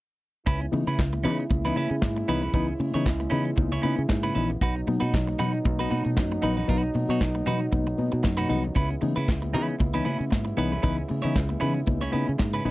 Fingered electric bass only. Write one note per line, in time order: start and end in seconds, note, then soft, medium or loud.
0.47 0.67 C#2 medium
0.73 0.84 C#3 medium
0.87 0.96 C#3 medium
0.99 1.26 C#2 medium
1.25 1.45 C#3 medium
1.51 1.71 C#2 loud
1.76 1.88 C#3 medium
1.91 2.00 C#3 medium
2.03 2.23 G#2 medium
2.28 2.48 C2 medium
2.54 2.74 C#2 medium
2.80 2.91 C#3 medium
2.95 3.04 C#3 medium
3.06 3.26 C#2 medium
3.32 3.52 C#3 medium
3.58 3.78 C#2 loud
3.84 3.95 C#3 medium
3.99 4.07 C#3 medium
4.10 4.30 G#2 medium
4.36 4.56 A#1 medium
4.62 4.82 B1 loud
4.88 4.99 B2 loud
5.02 5.11 B2 medium
5.14 5.34 B1 loud
5.40 5.59 B2 loud
5.66 5.85 B1 loud
5.92 6.03 B2 medium
6.06 6.15 B2 medium
6.18 6.37 F#2 medium
6.43 6.63 A#1 medium
6.69 6.89 B1 medium
6.95 7.06 B2 medium
7.09 7.18 B2 loud
7.21 7.41 B1 loud
7.47 7.67 B2 medium
7.73 7.93 B1 loud
7.99 8.10 B2 medium
8.13 8.22 B2 medium
8.25 8.45 F#2 medium
8.50 8.70 C2 medium
8.76 8.96 C#2 medium
9.03 9.14 C#3 loud
9.17 9.26 C#3 loud
9.28 9.56 C#2 medium
9.54 9.74 C#3 loud
9.81 10.00 C#2 loud
10.06 10.17 C#3 medium
10.20 10.29 C#3 medium
10.32 10.52 G#2 medium
10.58 10.78 C2 medium
10.84 11.04 C#2 loud
11.11 11.21 C#3 loud
11.25 11.33 C#3 medium
11.36 11.56 C#2 loud
11.62 11.82 C#3 loud
11.88 12.08 C#2 loud
12.14 12.25 C#3 medium
12.29 12.37 C#3 medium
12.40 12.60 G#2 medium
12.65 12.71 A#1 medium